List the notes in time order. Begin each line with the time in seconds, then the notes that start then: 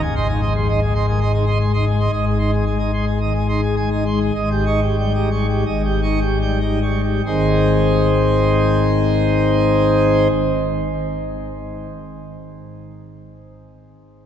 0.02 G#1 G#2 G#5
0.16 D#5 C6
0.28 D#4 G#4
0.42 D#5 C6
0.55 G#3 C6
0.69 D#4 D#5 C6
0.82 G#3 G#4
0.95 D#5 C6
1.08 D#3 G#5
1.21 D#5 C6
1.33 D#4 G#4
1.46 D#5 C6
1.60 G#3 C6
1.74 D#4 D#5 C6
1.87 G#3 G#4
2.00 D#5 C6
2.13 G#1 G#2 D#5
2.26 G#4
2.39 D#4 C6
2.53 G#4
2.66 G#3 G#5
2.79 D#4 G#4
2.93 G#3 C6
3.07 G#4
3.21 D#3 D#5
3.35 G#4
3.49 D#4 C6
3.63 G#4
3.77 G#3 G#5
3.91 D#4 G#4
4.06 G#3 C6
4.21 G#4
4.35 G#1 G#2 D#5
4.51 G4
4.66 D#4 C#6
4.81 G4
4.97 G3 G5
5.14 D#4 G4
5.31 G3 C#6
5.49 G4
5.66 G#1 G#2 D#5
5.84 G4
6.02 D#4 C#6
6.20 G4
6.41 G3 G5
6.60 D#4 G4
6.82 G3 C#6
7.03 G4
7.26 G#1 G#2 D#3 C4 D#4 G#4 C5